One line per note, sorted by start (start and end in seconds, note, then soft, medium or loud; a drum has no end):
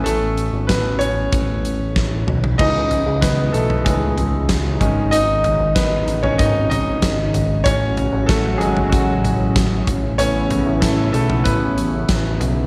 0.00 0.07 A3 medium
0.00 0.68 B3 soft
0.00 1.00 C#4 medium
0.00 0.70 A4 medium
0.00 0.67 B4 medium
0.05 0.50 A1 medium
0.05 0.66 A3 medium
0.05 closed hi-hat medium
0.38 closed hi-hat soft
0.53 0.68 G#1 medium
0.67 1.28 A1 medium
0.67 0.99 B3 medium
0.67 1.01 B4 medium
0.67 kick loud
0.67 snare medium
0.67 closed hi-hat medium
0.99 1.92 C#4 medium
0.99 1.91 C#5 loud
0.99 closed hi-hat medium
1.32 2.24 A1 medium
1.32 kick loud
1.32 closed hi-hat medium
1.65 closed hi-hat medium
1.96 kick medium
1.96 snare soft
2.27 2.57 B1 medium
2.27 mid tom medium
2.44 floor tom medium
2.58 3.04 C#2 loud
2.58 9.83 C#3 medium
2.58 3.50 E3 soft
2.58 4.79 E3 medium
2.58 3.50 C#4 soft
2.58 7.62 D#4 medium
2.58 3.19 D#4 medium
2.58 3.24 D#5 medium
2.58 kick loud
2.58 crash medium
2.91 closed hi-hat soft
2.91 floor tom medium
3.06 3.51 C#2 medium
3.21 3.52 B3 medium
3.21 3.51 B4 medium
3.21 kick loud
3.21 snare medium
3.21 closed hi-hat medium
3.53 3.83 B1 medium
3.53 3.84 A3 medium
3.53 3.86 A4 medium
3.53 closed hi-hat medium
3.70 floor tom medium
3.85 4.77 C#2 medium
3.85 4.77 G#3 medium
3.85 4.76 G#4 medium
3.85 kick loud
3.85 closed hi-hat medium
4.18 closed hi-hat medium
4.18 floor tom soft
4.49 kick loud
4.49 snare medium
4.49 closed hi-hat medium
4.80 5.10 G#1 medium
4.80 5.72 D#3 soft
4.80 7.63 D#3 medium
4.80 5.72 G#3 medium
4.80 5.72 C#4 medium
4.80 kick medium
4.80 closed hi-hat medium
4.80 floor tom medium
5.11 5.56 G#1 loud
5.11 5.72 D#4 medium
5.11 5.71 D#5 medium
5.11 closed hi-hat medium
5.44 closed hi-hat soft
5.44 floor tom medium
5.60 6.04 G#1 medium
5.75 6.20 B3 medium
5.75 6.24 B4 medium
5.75 kick loud
5.75 snare medium
5.75 closed hi-hat loud
6.07 6.37 A1 medium
6.07 closed hi-hat medium
6.23 6.38 C#4 medium
6.23 6.39 C#5 medium
6.23 floor tom medium
6.38 6.99 G#1 loud
6.38 6.69 D#4 medium
6.38 6.68 D#5 medium
6.38 kick loud
6.38 closed hi-hat medium
6.70 7.30 D#4 medium
6.70 7.30 D#5 medium
6.70 closed hi-hat medium
6.70 floor tom medium
7.02 7.32 G#1 medium
7.02 kick loud
7.02 snare medium
7.02 closed hi-hat medium
7.34 7.63 G#1 medium
7.34 closed hi-hat medium
7.34 floor tom medium
7.64 8.10 A1 loud
7.64 9.85 F#3 medium
7.64 8.25 C#4 medium
7.64 12.67 C#4 medium
7.64 9.85 F#4 medium
7.64 8.30 C#5 loud
7.64 kick loud
7.64 closed hi-hat medium
7.97 closed hi-hat soft
7.97 floor tom medium
8.13 8.57 A1 medium
8.26 8.59 A3 medium
8.26 8.57 A4 medium
8.26 kick loud
8.26 snare loud
8.26 closed hi-hat medium
8.58 8.90 G#1 medium
8.58 8.91 F#3 medium
8.58 8.68 G#3 medium
8.58 9.03 A3 soft
8.58 9.03 C#4 medium
8.58 8.65 G#4 medium
8.58 closed hi-hat medium
8.77 floor tom medium
8.89 9.83 A1 loud
8.89 9.84 F#3 medium
8.89 9.82 F#4 medium
8.89 kick loud
8.89 closed hi-hat medium
9.24 closed hi-hat medium
9.24 floor tom soft
9.56 kick loud
9.56 snare medium
9.56 closed hi-hat medium
9.87 10.17 A1 medium
9.87 12.67 C#3 medium
9.87 12.67 B3 medium
9.87 12.67 E4 medium
9.87 kick medium
9.87 closed hi-hat medium
9.87 floor tom medium
10.18 10.63 A1 loud
10.18 10.81 A3 soft
10.18 11.10 B3 medium
10.18 10.79 C#4 medium
10.18 10.84 C#5 loud
10.18 closed hi-hat medium
10.50 closed hi-hat soft
10.50 floor tom medium
10.66 11.11 A1 loud
10.81 11.12 A3 medium
10.81 11.11 A4 medium
10.81 kick loud
10.81 snare medium
10.81 closed hi-hat loud
11.12 11.43 B1 medium
11.12 11.44 A3 medium
11.12 11.46 A4 medium
11.12 closed hi-hat medium
11.30 floor tom medium
11.44 12.05 A1 loud
11.44 12.37 B3 medium
11.44 12.36 B4 medium
11.44 kick medium
11.44 closed hi-hat medium
11.78 closed hi-hat medium
12.09 12.38 A1 medium
12.09 kick loud
12.09 snare medium
12.09 closed hi-hat medium
12.40 12.67 B1 medium
12.40 closed hi-hat medium
12.40 floor tom medium